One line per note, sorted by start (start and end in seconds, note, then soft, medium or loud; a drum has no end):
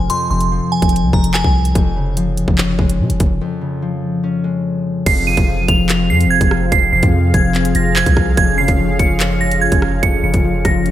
0.00 0.29 C3 medium
0.00 0.36 F3 medium
0.00 1.12 G#3 medium
0.00 0.92 C4 medium
0.10 1.74 F2 medium
0.10 0.28 C6 loud
0.10 closed hi-hat medium
0.30 0.60 F1 loud
0.30 1.80 C3 medium
0.30 0.69 C6 medium
0.41 closed hi-hat medium
0.51 1.80 F3 medium
0.72 1.11 G#5 medium
0.82 1.04 F1 loud
0.82 kick medium
0.82 closed hi-hat medium
0.89 2.02 C4 medium
0.89 closed hi-hat medium
0.96 closed hi-hat medium
1.03 1.13 C2 loud
1.13 1.43 F1 loud
1.13 1.80 G#3 medium
1.13 1.31 A#5 medium
1.13 kick loud
1.24 closed hi-hat medium
1.34 1.73 G#5 medium
1.34 clap loud
1.44 1.74 C2 loud
1.44 kick loud
1.65 closed hi-hat medium
1.75 2.45 F1 loud
1.75 3.40 F2 medium
1.75 kick loud
1.75 closed hi-hat medium
1.96 3.60 C#3 medium
2.17 3.67 F3 medium
2.17 closed hi-hat medium
2.37 closed hi-hat medium
2.48 2.78 F1 medium
2.48 kick medium
2.58 4.23 C#4 medium
2.58 clap loud
2.79 3.01 F1 loud
2.79 4.43 G#3 medium
2.79 kick medium
2.89 closed hi-hat medium
3.00 3.11 C3 loud
3.10 3.20 F1 medium
3.10 closed hi-hat medium
3.20 3.40 F1 loud
3.20 kick loud
3.20 closed hi-hat medium
3.41 5.05 F2 medium
3.61 5.11 C#3 medium
3.82 5.11 F3 medium
4.24 5.33 C#4 medium
4.44 5.11 G#3 medium
5.06 5.36 F1 loud
5.06 6.71 F2 loud
5.06 8.34 C4 medium
5.06 10.91 F4 medium
5.06 10.91 G#4 medium
5.06 10.91 F5 medium
5.06 5.24 C7 loud
5.06 kick loud
5.06 closed hi-hat medium
5.06 crash loud
5.27 6.91 C3 medium
5.27 5.66 D#7 medium
5.37 5.67 F1 loud
5.37 kick loud
5.37 closed hi-hat medium
5.48 6.98 F3 medium
5.68 6.11 F1 loud
5.68 6.07 F7 medium
5.68 kick loud
5.68 closed hi-hat medium
5.89 7.54 C4 medium
5.89 clap loud
5.89 closed hi-hat medium
6.10 6.27 F2 loud
6.10 7.74 G#3 medium
6.10 6.28 C7 medium
6.21 closed hi-hat medium
6.25 6.40 F1 loud
6.30 6.69 G#6 loud
6.41 6.71 F1 loud
6.41 kick loud
6.41 closed hi-hat medium
6.51 cross-stick loud
6.72 6.92 F1 loud
6.72 8.36 F2 medium
6.72 6.90 C7 loud
6.72 kick loud
6.72 closed hi-hat medium
6.92 7.02 F1 loud
6.92 8.42 C3 medium
6.92 7.32 C7 medium
7.03 7.33 F2 loud
7.03 kick loud
7.03 closed hi-hat medium
7.13 8.42 F3 medium
7.34 7.74 F1 loud
7.34 7.73 G#6 medium
7.34 kick loud
7.34 closed hi-hat medium
7.54 8.64 C4 medium
7.54 clap medium
7.54 closed hi-hat soft
7.65 closed hi-hat medium
7.75 8.05 F1 loud
7.75 8.42 G#3 medium
7.75 7.93 A#6 medium
7.75 closed hi-hat medium
7.96 8.35 G#6 medium
7.96 clap loud
8.06 8.36 C2 loud
8.06 kick loud
8.06 closed hi-hat medium
8.17 kick loud
8.17 cross-stick loud
8.37 8.67 F1 loud
8.37 10.02 F2 medium
8.37 10.91 C#4 medium
8.37 8.55 G#6 loud
8.37 kick loud
8.37 closed hi-hat medium
8.58 10.22 C#3 medium
8.58 8.97 C7 medium
8.68 8.91 F1 loud
8.68 kick loud
8.68 closed hi-hat medium
8.79 10.29 F3 medium
8.89 8.99 F#1 loud
8.99 9.69 F1 loud
8.99 9.38 C#7 medium
8.99 kick loud
8.99 closed hi-hat medium
9.20 10.85 C#4 medium
9.20 clap loud
9.20 closed hi-hat medium
9.41 10.91 G#3 medium
9.41 9.59 A#6 medium
9.51 closed hi-hat medium
9.61 10.00 G#6 medium
9.72 10.02 F1 loud
9.72 kick loud
9.72 closed hi-hat medium
9.82 cross-stick loud
10.03 10.23 F1 loud
10.03 10.91 F2 medium
10.03 10.21 C#7 loud
10.03 kick loud
10.03 closed hi-hat medium
10.23 10.33 F1 loud
10.23 10.91 C#3 medium
10.23 10.63 C#7 medium
10.34 10.64 F1 loud
10.34 kick loud
10.34 closed hi-hat medium
10.44 10.91 F3 medium
10.65 10.91 F1 loud
10.65 10.91 A#6 medium
10.65 kick loud
10.65 cross-stick medium
10.65 closed hi-hat medium
10.85 10.91 C#4 medium
10.85 closed hi-hat soft